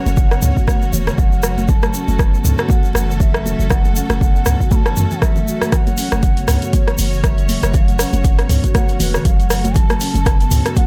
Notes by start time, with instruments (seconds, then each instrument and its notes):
Already playing: string section A3 C#4 F#4 C#5, bansuri F#5
0.06 808-style bass F#1, muted conga, high conga, shaker
0.17 marimba C#3, kick, shaker
0.31 marimba B3, cross-stick, shaker
0.42 808-style bass C#2, mid tom, muted conga, shaker
0.57 marimba F#4, kick, shaker
0.67 bansuri F#5, kick, cross-stick, high conga, shaker
0.82 marimba E3, muted conga, shaker
0.93 808-style bass E1, bansuri C#5, high conga, low conga, shaker
1.07 marimba C#3, cross-stick, low conga, shaker
1.18 808-style bass F#1, marimba F#3, bansuri F#5, kick, muted conga, shaker
1.32 shaker
1.43 marimba F#3, cross-stick, shaker
1.58 high conga, shaker
1.68 string section A4, bansuri A5, kick, muted conga, low conga, shaker
1.83 cross-stick, high conga, shaker
1.94 marimba C#4, shaker
2.08 808-style bass F#1, muted conga, high conga, shaker
2.19 marimba C#3, kick, cross-stick, shaker
2.34 marimba B3, shaker
2.44 808-style bass C#2, mid tom, muted conga, shaker
2.58 marimba F#4, cross-stick, shaker
2.69 bansuri F#5, kick, high conga, shaker
2.83 marimba E3, muted conga, shaker
2.93 808-style bass F#1, bansuri F#5, cross-stick, high conga, shaker
3.09 marimba C#3, shaker
3.20 marimba F#3, bansuri E5, kick, muted conga, high conga, shaker
3.34 cross-stick, shaker
3.45 808-style bass E1, marimba F#3, high conga, shaker
3.59 808-style bass F#1, shaker
3.70 marimba F#3, bansuri F#5, kick, cross-stick, muted conga, low conga, shaker
3.85 high conga, shaker
3.96 marimba C#4, bansuri F#5, shaker
4.10 808-style bass F#1, cross-stick, muted conga, high conga, shaker
4.21 marimba C#3, kick, shaker
4.36 marimba B3, shaker
4.46 808-style bass C#2, cross-stick, mid tom, muted conga, shaker
4.61 marimba F#4, kick, shaker
4.71 bansuri B5, kick, high conga, shaker
4.75 bansuri A5
4.86 marimba E3, cross-stick, muted conga, shaker
4.97 808-style bass F#2, high conga, low conga, shaker
5.11 marimba E3, low conga, shaker
5.22 marimba F#3, bansuri E5, kick, cross-stick, muted conga, shaker
5.36 marimba A3, low conga, shaker
5.47 marimba F#4, shaker
5.62 cross-stick, high conga, shaker
5.72 string section C#5, bansuri A5, kick, cross-stick, closed hi-hat, muted conga, low conga, shaker
5.76 bansuri F#5
5.87 closed hi-hat, high conga, shaker
5.97 marimba C#4, open hi-hat, shaker
6.12 808-style bass F#1, cross-stick, closed hi-hat, muted conga, high conga, shaker
6.23 marimba C#3, kick, closed hi-hat, shaker
6.37 marimba B3, closed hi-hat, shaker
6.48 808-style bass C#2, cross-stick, mid tom, open hi-hat, muted conga, shaker
6.62 marimba F#4, closed hi-hat, shaker
6.73 bansuri C#5, kick, closed hi-hat, high conga, shaker
6.87 marimba E3, cross-stick, closed hi-hat, muted conga, shaker
6.98 808-style bass F#1, bansuri C#5, open hi-hat, high conga, shaker
7.13 marimba C#3, shaker
7.24 marimba F#3, bansuri E5, kick, cross-stick, closed hi-hat, muted conga, high conga, shaker
7.38 closed hi-hat, shaker
7.49 808-style bass E1, marimba F#3, open hi-hat, high conga, shaker
7.63 808-style bass F#1, cross-stick, closed hi-hat, shaker
7.74 marimba F#3, bansuri F5, kick, closed hi-hat, muted conga, low conga, shaker
7.85 bansuri F#5, closed hi-hat, high conga, shaker
7.99 marimba C#4, cross-stick, open hi-hat, shaker
8.13 808-style bass F#1, closed hi-hat, muted conga, high conga, shaker
8.24 marimba C#3, kick, closed hi-hat, shaker
8.39 marimba B3, cross-stick, closed hi-hat, shaker
8.49 808-style bass C#2, mid tom, open hi-hat, muted conga, shaker
8.64 marimba F#4, kick, closed hi-hat, shaker
8.74 bansuri F#5, kick, cross-stick, closed hi-hat, high conga, shaker
8.88 marimba E3, closed hi-hat, muted conga, shaker
9.00 808-style bass E1, bansuri B4, open hi-hat, high conga, low conga, shaker
9.14 marimba C#3, cross-stick, low conga, shaker
9.25 808-style bass F#1, marimba F#3, bansuri F#5, kick, closed hi-hat, muted conga, shaker
9.40 closed hi-hat, shaker
9.50 marimba F#3, cross-stick, open hi-hat, shaker
9.64 closed hi-hat, high conga, shaker
9.74 marimba F#3, string section A4, bansuri A5, kick, closed hi-hat, muted conga, low conga, shaker
9.90 cross-stick, closed hi-hat, high conga, shaker
10.00 marimba C#4, open hi-hat, shaker
10.14 808-style bass F#1, closed hi-hat, muted conga, high conga, shaker
10.26 marimba C#3, kick, cross-stick, closed hi-hat, shaker
10.40 marimba B3, closed hi-hat, shaker
10.51 808-style bass C#2, mid tom, open hi-hat, muted conga, shaker
10.65 marimba F#4, cross-stick, closed hi-hat, shaker
10.76 bansuri F#5, kick, closed hi-hat, high conga, shaker